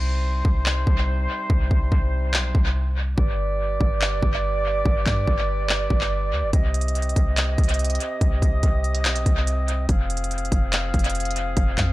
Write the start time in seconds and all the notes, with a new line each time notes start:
Already playing: C2 C3 G3 D#4 C5
0.45 C2, kick
0.66 clap
0.87 C2, kick
1.50 C2, kick
1.71 C2, kick
1.92 C2, kick
2.34 B1, clap
2.55 C2, kick
3.18 G1 G3 G4 B4 D5, kick
3.81 G1, kick
4.02 clap
4.23 G1, kick
4.85 G1, kick
5.06 G2, kick, clap
5.27 G1, kick
5.69 clap
5.90 G1, kick
6.01 clap
6.32 D2
6.43 G1
6.53 C2 C3 C4 G4 D#5, kick, closed hi-hat
6.74 closed hi-hat
6.81 closed hi-hat
6.88 closed hi-hat
6.95 closed hi-hat
7.02 closed hi-hat
7.09 closed hi-hat
7.16 C2, kick, closed hi-hat
7.37 clap, closed hi-hat
7.58 C2, kick, closed hi-hat
7.64 closed hi-hat
7.69 closed hi-hat
7.74 closed hi-hat
7.79 closed hi-hat
7.84 closed hi-hat
7.90 closed hi-hat
7.95 closed hi-hat
8.00 closed hi-hat
8.21 C2, kick, closed hi-hat
8.42 C2, kick, closed hi-hat
8.63 C2, kick, closed hi-hat
8.84 closed hi-hat
8.95 closed hi-hat
9.05 B1, clap, closed hi-hat
9.16 closed hi-hat
9.26 C2, kick, closed hi-hat
9.47 closed hi-hat
9.68 closed hi-hat
9.89 F1 F3 G#4 F5, kick, closed hi-hat
10.10 closed hi-hat
10.17 closed hi-hat
10.24 closed hi-hat
10.31 closed hi-hat
10.38 closed hi-hat
10.45 closed hi-hat
10.52 F1, kick, closed hi-hat
10.73 clap, closed hi-hat
10.94 F1, kick, closed hi-hat
10.99 closed hi-hat
11.04 closed hi-hat
11.10 closed hi-hat
11.15 closed hi-hat
11.20 closed hi-hat
11.25 closed hi-hat
11.31 closed hi-hat
11.36 closed hi-hat
11.57 F1, kick, closed hi-hat
11.78 F2, kick, clap, closed hi-hat